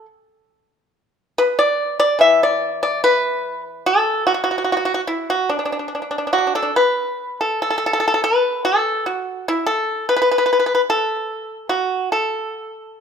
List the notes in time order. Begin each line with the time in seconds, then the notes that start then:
1.38 B4
1.59 D5
2.00 D5
2.19 E3 E5
2.43 D5
2.83 D5
3.04 B4
3.86 A4
4.27 F#4
4.44 F#4
4.51 F#4
4.58 F#4
4.64 F#4
4.72 F#4
4.77 F#4
4.85 F#4
4.94 F#4
5.07 E4
5.30 F#4
5.49 D4
5.59 D4
5.65 D4
5.72 D4
5.79 D4
5.88 D4
5.95 D4
6.02 D4
6.11 D4
6.18 D4
6.27 D4
6.33 D4 F#4
6.38 D4
6.47 D4
6.55 D4 A4
6.63 D4
6.76 B4
7.41 A4
7.62 A4
7.70 A4
7.78 A4
7.86 A4
7.93 A4
8.00 A4
8.08 A4
8.14 A4
8.24 B4
8.65 A4
9.06 F#4
9.48 E4
9.66 A4
10.09 B4
10.16 B4
10.22 B4
10.31 B4
10.38 B4
10.46 B4
10.53 B4
10.59 B4
10.66 B4
10.75 B4
10.90 A4
11.69 F#4
12.12 A4